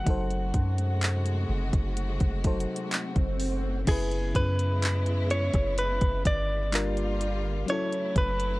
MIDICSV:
0, 0, Header, 1, 7, 480
1, 0, Start_track
1, 0, Tempo, 952381
1, 33, Time_signature, 4, 2, 24, 8
1, 4332, End_track
2, 0, Start_track
2, 0, Title_t, "Clean electric guitar"
2, 0, Program_c, 0, 27
2, 0, Note_on_c, 0, 78, 95
2, 857, Note_off_c, 0, 78, 0
2, 1958, Note_on_c, 0, 68, 89
2, 2197, Note_on_c, 0, 71, 93
2, 2202, Note_off_c, 0, 68, 0
2, 2674, Note_off_c, 0, 71, 0
2, 2676, Note_on_c, 0, 73, 99
2, 2914, Note_off_c, 0, 73, 0
2, 2916, Note_on_c, 0, 71, 98
2, 3138, Note_off_c, 0, 71, 0
2, 3159, Note_on_c, 0, 74, 114
2, 3878, Note_off_c, 0, 74, 0
2, 3880, Note_on_c, 0, 73, 103
2, 4120, Note_off_c, 0, 73, 0
2, 4122, Note_on_c, 0, 71, 90
2, 4332, Note_off_c, 0, 71, 0
2, 4332, End_track
3, 0, Start_track
3, 0, Title_t, "FM electric piano"
3, 0, Program_c, 1, 5
3, 0, Control_c, 1, 64, 127
3, 21, Note_on_c, 1, 54, 68
3, 31, Note_on_c, 1, 63, 62
3, 39, Control_c, 1, 64, 0
3, 42, Note_on_c, 1, 69, 63
3, 52, Note_on_c, 1, 72, 75
3, 120, Control_c, 1, 64, 127
3, 1206, Note_off_c, 1, 54, 0
3, 1212, Note_off_c, 1, 63, 0
3, 1217, Note_off_c, 1, 69, 0
3, 1222, Note_off_c, 1, 72, 0
3, 1229, Note_on_c, 1, 54, 63
3, 1234, Note_on_c, 1, 63, 57
3, 1239, Note_on_c, 1, 69, 54
3, 1245, Note_on_c, 1, 72, 64
3, 1940, Note_on_c, 1, 49, 67
3, 1951, Note_off_c, 1, 54, 0
3, 1953, Note_off_c, 1, 63, 0
3, 1956, Note_off_c, 1, 69, 0
3, 1956, Note_on_c, 1, 64, 62
3, 1959, Note_off_c, 1, 72, 0
3, 1959, Control_c, 1, 64, 0
3, 1971, Note_on_c, 1, 71, 80
3, 2042, Control_c, 1, 64, 127
3, 3366, Note_off_c, 1, 49, 0
3, 3374, Note_off_c, 1, 64, 0
3, 3382, Note_off_c, 1, 71, 0
3, 3386, Note_on_c, 1, 55, 68
3, 3391, Note_on_c, 1, 62, 64
3, 3396, Note_on_c, 1, 65, 59
3, 3398, Control_c, 1, 64, 0
3, 3402, Note_on_c, 1, 70, 74
3, 3491, Control_c, 1, 64, 127
3, 3860, Note_on_c, 1, 54, 72
3, 3869, Note_off_c, 1, 55, 0
3, 3871, Note_on_c, 1, 61, 65
3, 3872, Note_off_c, 1, 62, 0
3, 3874, Note_off_c, 1, 65, 0
3, 3877, Note_off_c, 1, 70, 0
3, 3880, Control_c, 1, 64, 0
3, 3881, Note_on_c, 1, 64, 66
3, 3891, Note_on_c, 1, 69, 77
3, 3960, Control_c, 1, 64, 127
3, 4332, Note_off_c, 1, 54, 0
3, 4332, Note_off_c, 1, 61, 0
3, 4332, Note_off_c, 1, 64, 0
3, 4332, Note_off_c, 1, 69, 0
3, 4332, End_track
4, 0, Start_track
4, 0, Title_t, "String section"
4, 0, Program_c, 2, 48
4, 29, Note_on_c, 2, 56, 67
4, 29, Note_on_c, 2, 57, 71
4, 30, Note_on_c, 2, 48, 72
4, 31, Note_on_c, 2, 66, 77
4, 1932, Note_off_c, 2, 48, 0
4, 1932, Note_off_c, 2, 56, 0
4, 1932, Note_off_c, 2, 57, 0
4, 1932, Note_off_c, 2, 66, 0
4, 1952, Note_on_c, 2, 49, 79
4, 1952, Note_on_c, 2, 56, 72
4, 1952, Note_on_c, 2, 59, 69
4, 1953, Note_on_c, 2, 64, 83
4, 3378, Note_off_c, 2, 49, 0
4, 3378, Note_off_c, 2, 56, 0
4, 3378, Note_off_c, 2, 59, 0
4, 3378, Note_off_c, 2, 64, 0
4, 3393, Note_on_c, 2, 50, 77
4, 3393, Note_on_c, 2, 55, 72
4, 3393, Note_on_c, 2, 58, 73
4, 3393, Note_on_c, 2, 65, 86
4, 3868, Note_off_c, 2, 50, 0
4, 3868, Note_off_c, 2, 55, 0
4, 3868, Note_off_c, 2, 58, 0
4, 3868, Note_off_c, 2, 65, 0
4, 3872, Note_on_c, 2, 49, 76
4, 3873, Note_on_c, 2, 54, 70
4, 3873, Note_on_c, 2, 57, 71
4, 3873, Note_on_c, 2, 64, 85
4, 4332, Note_off_c, 2, 49, 0
4, 4332, Note_off_c, 2, 54, 0
4, 4332, Note_off_c, 2, 57, 0
4, 4332, Note_off_c, 2, 64, 0
4, 4332, End_track
5, 0, Start_track
5, 0, Title_t, "808-style bass"
5, 0, Program_c, 3, 38
5, 34, Note_on_c, 3, 30, 112
5, 263, Note_off_c, 3, 30, 0
5, 273, Note_on_c, 3, 42, 99
5, 733, Note_off_c, 3, 42, 0
5, 752, Note_on_c, 3, 30, 92
5, 868, Note_off_c, 3, 30, 0
5, 872, Note_on_c, 3, 30, 103
5, 1103, Note_off_c, 3, 30, 0
5, 1112, Note_on_c, 3, 30, 96
5, 1343, Note_off_c, 3, 30, 0
5, 1592, Note_on_c, 3, 30, 99
5, 1938, Note_off_c, 3, 30, 0
5, 1953, Note_on_c, 3, 30, 112
5, 2183, Note_off_c, 3, 30, 0
5, 2193, Note_on_c, 3, 42, 102
5, 2773, Note_off_c, 3, 42, 0
5, 2792, Note_on_c, 3, 30, 104
5, 3022, Note_off_c, 3, 30, 0
5, 3031, Note_on_c, 3, 30, 104
5, 3147, Note_off_c, 3, 30, 0
5, 3153, Note_on_c, 3, 31, 104
5, 3852, Note_off_c, 3, 31, 0
5, 4112, Note_on_c, 3, 30, 97
5, 4332, Note_off_c, 3, 30, 0
5, 4332, End_track
6, 0, Start_track
6, 0, Title_t, "Swell"
6, 0, Program_c, 4, 103
6, 33, Note_on_c, 4, 60, 81
6, 1953, Note_off_c, 4, 60, 0
6, 4332, End_track
7, 0, Start_track
7, 0, Title_t, "Drums"
7, 32, Note_on_c, 9, 36, 115
7, 33, Note_on_c, 9, 42, 72
7, 83, Note_off_c, 9, 36, 0
7, 84, Note_off_c, 9, 42, 0
7, 154, Note_on_c, 9, 42, 43
7, 204, Note_off_c, 9, 42, 0
7, 272, Note_on_c, 9, 36, 97
7, 272, Note_on_c, 9, 42, 72
7, 322, Note_off_c, 9, 42, 0
7, 323, Note_off_c, 9, 36, 0
7, 394, Note_on_c, 9, 42, 53
7, 445, Note_off_c, 9, 42, 0
7, 512, Note_on_c, 9, 42, 74
7, 518, Note_on_c, 9, 39, 109
7, 563, Note_off_c, 9, 42, 0
7, 568, Note_off_c, 9, 39, 0
7, 633, Note_on_c, 9, 42, 52
7, 683, Note_off_c, 9, 42, 0
7, 872, Note_on_c, 9, 36, 90
7, 872, Note_on_c, 9, 42, 52
7, 923, Note_off_c, 9, 36, 0
7, 923, Note_off_c, 9, 42, 0
7, 992, Note_on_c, 9, 42, 70
7, 1042, Note_off_c, 9, 42, 0
7, 1110, Note_on_c, 9, 42, 49
7, 1112, Note_on_c, 9, 36, 90
7, 1161, Note_off_c, 9, 42, 0
7, 1162, Note_off_c, 9, 36, 0
7, 1231, Note_on_c, 9, 42, 70
7, 1232, Note_on_c, 9, 36, 95
7, 1281, Note_off_c, 9, 42, 0
7, 1282, Note_off_c, 9, 36, 0
7, 1312, Note_on_c, 9, 42, 67
7, 1362, Note_off_c, 9, 42, 0
7, 1392, Note_on_c, 9, 42, 60
7, 1442, Note_off_c, 9, 42, 0
7, 1470, Note_on_c, 9, 42, 66
7, 1475, Note_on_c, 9, 39, 109
7, 1521, Note_off_c, 9, 42, 0
7, 1525, Note_off_c, 9, 39, 0
7, 1591, Note_on_c, 9, 42, 49
7, 1592, Note_on_c, 9, 36, 98
7, 1642, Note_off_c, 9, 36, 0
7, 1642, Note_off_c, 9, 42, 0
7, 1712, Note_on_c, 9, 46, 64
7, 1762, Note_off_c, 9, 46, 0
7, 1951, Note_on_c, 9, 42, 73
7, 1951, Note_on_c, 9, 49, 100
7, 1952, Note_on_c, 9, 36, 119
7, 2002, Note_off_c, 9, 36, 0
7, 2002, Note_off_c, 9, 42, 0
7, 2002, Note_off_c, 9, 49, 0
7, 2073, Note_on_c, 9, 42, 42
7, 2124, Note_off_c, 9, 42, 0
7, 2192, Note_on_c, 9, 36, 96
7, 2193, Note_on_c, 9, 42, 74
7, 2243, Note_off_c, 9, 36, 0
7, 2243, Note_off_c, 9, 42, 0
7, 2314, Note_on_c, 9, 42, 56
7, 2364, Note_off_c, 9, 42, 0
7, 2433, Note_on_c, 9, 42, 74
7, 2438, Note_on_c, 9, 39, 109
7, 2483, Note_off_c, 9, 42, 0
7, 2488, Note_off_c, 9, 39, 0
7, 2551, Note_on_c, 9, 42, 54
7, 2602, Note_off_c, 9, 42, 0
7, 2673, Note_on_c, 9, 42, 62
7, 2723, Note_off_c, 9, 42, 0
7, 2790, Note_on_c, 9, 42, 49
7, 2792, Note_on_c, 9, 36, 96
7, 2797, Note_on_c, 9, 37, 62
7, 2840, Note_off_c, 9, 42, 0
7, 2842, Note_off_c, 9, 36, 0
7, 2847, Note_off_c, 9, 37, 0
7, 2912, Note_on_c, 9, 42, 77
7, 2962, Note_off_c, 9, 42, 0
7, 3030, Note_on_c, 9, 42, 53
7, 3032, Note_on_c, 9, 36, 95
7, 3080, Note_off_c, 9, 42, 0
7, 3082, Note_off_c, 9, 36, 0
7, 3152, Note_on_c, 9, 36, 99
7, 3152, Note_on_c, 9, 42, 78
7, 3202, Note_off_c, 9, 36, 0
7, 3202, Note_off_c, 9, 42, 0
7, 3391, Note_on_c, 9, 42, 62
7, 3396, Note_on_c, 9, 39, 114
7, 3442, Note_off_c, 9, 42, 0
7, 3446, Note_off_c, 9, 39, 0
7, 3513, Note_on_c, 9, 42, 49
7, 3563, Note_off_c, 9, 42, 0
7, 3633, Note_on_c, 9, 42, 67
7, 3683, Note_off_c, 9, 42, 0
7, 3872, Note_on_c, 9, 42, 74
7, 3922, Note_off_c, 9, 42, 0
7, 3994, Note_on_c, 9, 42, 46
7, 4045, Note_off_c, 9, 42, 0
7, 4112, Note_on_c, 9, 36, 100
7, 4112, Note_on_c, 9, 42, 77
7, 4162, Note_off_c, 9, 36, 0
7, 4162, Note_off_c, 9, 42, 0
7, 4232, Note_on_c, 9, 42, 58
7, 4282, Note_off_c, 9, 42, 0
7, 4332, End_track
0, 0, End_of_file